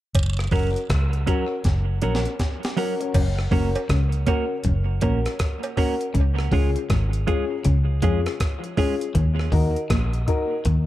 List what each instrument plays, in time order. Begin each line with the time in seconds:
0.15 fingered electric bass F#1, kick, closed hi-hat, cowbell, vibraslap
0.39 cross-stick
0.52 fingered electric bass F#1, clean electric guitar F#3 C#4 F#4 A#4, upright piano C#4 F#4 A#4, kick, open hi-hat
0.76 closed hi-hat
0.90 fingered electric bass C#2, kick, cross-stick, closed hi-hat
1.13 closed hi-hat
1.27 clean electric guitar F#3 C#4 F#4 A#4, upright piano C#4 F#4 A#4, kick, closed hi-hat
1.64 fingered electric bass F#1, kick, snare, closed hi-hat
2.02 fingered electric bass A#1, clean electric guitar F#3 C#4 F#4 A#4, upright piano C#4 F#4 A#4, closed hi-hat
2.15 snare
2.25 upright piano F#4 A#4, closed hi-hat
2.39 kick, snare, closed hi-hat
2.63 snare, closed hi-hat
2.77 clean electric guitar F#3 C#4 F#4 A#4, upright piano C#4 F#4 A#4, open hi-hat
3.00 upright piano C#4 F#4 A#4, closed hi-hat
3.14 fingered electric bass F#1, clean electric guitar F#2, kick, closed hi-hat, crash, cowbell
3.39 cross-stick
3.51 fingered electric bass F#1, clean electric guitar F#2 A#3 C#4 F#4 A#4, upright piano C#4 F#4 A#4, kick, open hi-hat
3.75 closed hi-hat, cowbell
3.89 fingered electric bass C#2, clean electric guitar C#3, kick, cross-stick, closed hi-hat
4.12 closed hi-hat
4.27 clean electric guitar A#3 C#4 F#4 A#4, upright piano C#4 F#4 A#4, kick, closed hi-hat, cowbell
4.64 fingered electric bass F#1, clean electric guitar F#2, kick, closed hi-hat
5.01 fingered electric bass A#1, clean electric guitar A#2 A#3 C#4 F#4 A#4, upright piano C#4 F#4 A#4, kick, closed hi-hat, cowbell
5.26 cross-stick, closed hi-hat
5.39 kick, cross-stick, closed hi-hat
5.63 closed hi-hat, cowbell
5.77 clean electric guitar A#3 C#4 F#4 A#4, upright piano C#4 F#4 A#4, kick, open hi-hat
6.01 closed hi-hat
6.14 fingered electric bass C#2, clean electric guitar C#3, kick, closed hi-hat
6.39 cross-stick
6.52 fingered electric bass C#2, clean electric guitar C#3 G#3 C#4 F4 G#4, upright piano C#4 F4 G#4, kick, open hi-hat
6.76 closed hi-hat
6.90 fingered electric bass G#1, clean electric guitar G#2, kick, cross-stick, closed hi-hat
7.13 closed hi-hat
7.27 clean electric guitar G#3 C#4 F4 G#4, upright piano C#4 F4 G#4, kick, closed hi-hat
7.64 fingered electric bass C#2, clean electric guitar C#3, kick, closed hi-hat
8.02 fingered electric bass F2, clean electric guitar F3 G#3 C#4 F4 G#4, upright piano C#4 F4 G#4, kick, closed hi-hat
8.26 cross-stick, closed hi-hat
8.40 kick, cross-stick, closed hi-hat
8.64 upright piano F4 G#4, closed hi-hat
8.77 clean electric guitar G#3 C#4 F4 G#4, upright piano C#4 F4 G#4, kick, open hi-hat
9.01 closed hi-hat
9.15 fingered electric bass D#2, clean electric guitar D#3, kick, closed hi-hat
9.39 cross-stick
9.52 fingered electric bass D#2, clean electric guitar D#3, upright piano D#4 F#4 A#4, kick, open hi-hat
9.76 closed hi-hat
9.90 fingered electric bass A#1, clean electric guitar A#2, kick, cross-stick, closed hi-hat
10.13 closed hi-hat
10.27 upright piano D#4 F#4 A#4, kick, closed hi-hat
10.65 fingered electric bass D#2, clean electric guitar D#3, kick, closed hi-hat